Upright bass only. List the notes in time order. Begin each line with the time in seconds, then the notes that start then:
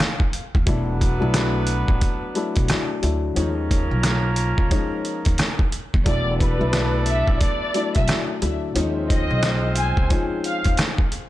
0.55 D#2
0.67 E1
1.22 B1
1.89 A1
2.57 B1
3.03 D2
3.37 D#2
3.91 B1
4.58 C#2
5.26 D#2
5.94 D#2
6.06 E1
6.61 B1
7.28 A1
7.96 B1
8.42 D2
8.76 D#2
9.31 B1
9.97 C#2
10.66 D#2